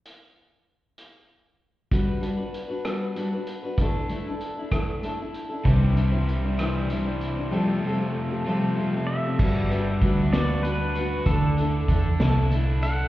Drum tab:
CC |------|------|------|------|
HH |x--x--|xxxxxx|xxxxxx|xxxxxx|
SD |------|---r--|---r--|---r--|
BD |------|o-----|o--o--|o-----|

CC |------|x-----|------|
HH |------|-xxxxx|xxxxxx|
SD |------|---o--|---o--|
BD |------|o-o---|o-o---|